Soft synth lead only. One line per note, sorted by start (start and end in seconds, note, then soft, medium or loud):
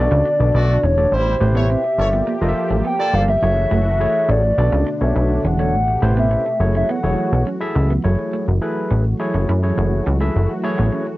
0.00 0.86 D5 loud
0.85 1.16 C#5 loud
1.14 1.56 C5 loud
1.57 2.68 E5 loud
2.86 3.16 G5 loud
3.15 3.29 F5 loud
3.29 4.32 E5 loud
4.30 5.02 D5 loud
5.03 5.43 E5 loud
5.46 6.14 F#5 loud
6.19 6.72 E5 loud
6.77 6.89 E5 loud
6.91 7.44 F#5 loud